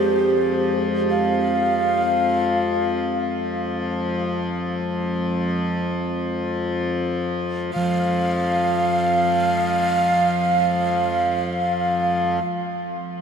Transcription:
0.00 7.71 F2 medium
0.00 7.71 F3 medium
0.00 4.03 G#3 soft
0.00 0.99 C4 soft
0.00 0.84 G4 medium
1.10 3.17 F5 medium
7.73 12.39 F2 medium
7.73 12.40 F3 medium
7.73 12.43 F3 soft
7.73 12.40 F5 medium

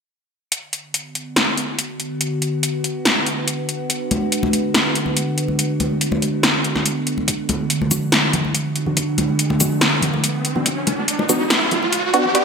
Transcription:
0.52 7.24 D3 medium
0.52 7.24 B3 medium
0.52 7.24 F#4 medium
0.52 closed hi-hat medium
0.73 closed hi-hat soft
0.94 closed hi-hat medium
1.15 closed hi-hat medium
1.36 snare loud
1.36 closed hi-hat medium
1.57 closed hi-hat medium
1.79 closed hi-hat medium
2.00 closed hi-hat soft
2.21 closed hi-hat medium
2.42 closed hi-hat soft
2.63 closed hi-hat medium
2.84 closed hi-hat soft
3.05 snare loud
3.05 closed hi-hat medium
3.26 closed hi-hat medium
3.48 closed hi-hat medium
3.69 closed hi-hat soft
3.90 closed hi-hat medium
4.11 closed hi-hat soft
4.11 high conga medium
4.32 closed hi-hat medium
4.43 high conga loud
4.53 closed hi-hat medium
4.74 snare loud
4.74 closed hi-hat medium
4.95 closed hi-hat medium
5.06 high conga medium
5.17 closed hi-hat medium
5.38 closed hi-hat soft
5.48 high conga medium
5.59 closed hi-hat medium
5.80 closed hi-hat soft
5.80 high conga medium
6.01 closed hi-hat medium
6.12 high conga medium
6.22 closed hi-hat soft
6.43 snare loud
6.43 closed hi-hat medium
6.64 closed hi-hat soft
6.76 snare soft
6.76 high conga medium
6.86 closed hi-hat medium
7.07 closed hi-hat soft
7.18 high conga medium
7.28 12.45 D3 medium
7.28 12.45 B3 medium
7.28 12.45 F#4 medium
7.28 kick loud
7.28 closed hi-hat medium
7.28 riser medium
7.49 closed hi-hat medium
7.49 high conga loud
7.70 closed hi-hat medium
7.82 high conga medium
7.91 8.03 B3 medium
7.91 8.03 D4 medium
7.91 8.03 F#4 loud
7.91 closed hi-hat medium
7.91 low conga medium
7.91 shaker medium
8.12 snare loud
8.12 closed hi-hat medium
8.33 closed hi-hat medium
8.33 low conga medium
8.45 high conga medium
8.55 closed hi-hat medium
8.76 closed hi-hat medium
8.86 9.58 B3 medium
8.86 9.58 D4 medium
8.86 9.58 F#4 medium
8.86 low conga medium
8.97 kick loud
8.97 closed hi-hat medium
9.18 closed hi-hat medium
9.18 high conga medium
9.39 closed hi-hat medium
9.50 high conga loud
9.60 9.72 B3 loud
9.60 9.72 D4 medium
9.60 9.72 F#4 loud
9.60 closed hi-hat medium
9.60 low conga medium
9.60 shaker medium
9.81 snare loud
9.81 closed hi-hat medium
10.02 closed hi-hat medium
10.02 low conga medium
10.14 high conga medium
10.24 closed hi-hat medium
10.45 closed hi-hat medium
10.56 10.66 B3 medium
10.56 10.66 D4 medium
10.56 10.66 F#4 medium
10.56 low conga medium
10.66 kick loud
10.66 closed hi-hat medium
10.87 closed hi-hat medium
10.87 high conga loud
11.08 closed hi-hat medium
11.19 high conga loud
11.29 11.41 B3 medium
11.29 11.41 D4 medium
11.29 11.41 F#4 medium
11.29 closed hi-hat medium
11.29 low conga medium
11.29 shaker medium
11.50 snare loud
11.50 closed hi-hat medium
11.71 closed hi-hat medium
11.71 low conga medium
11.83 high conga medium
11.93 closed hi-hat medium
12.14 12.26 B3 medium
12.14 12.26 D4 medium
12.14 12.26 F#4 loud
12.14 closed hi-hat medium
12.25 low conga medium
12.35 12.45 B3 loud
12.35 12.45 D4 medium
12.35 12.45 F#4 loud
12.35 kick loud
12.35 closed hi-hat medium

